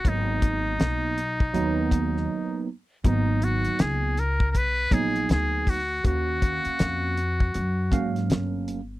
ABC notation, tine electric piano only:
X:1
M:4/4
L:1/8
Q:"Swing 16ths" 1/4=80
K:G#m
V:1 name="Tine electric piano"
[F,A,B,D]3 z [F,A,B,D]3 z | [F,A,B,D]3 z2 [F,A,B,D]2 z | [A,CF^e]3 z2 [F,A,Ce]2 z |]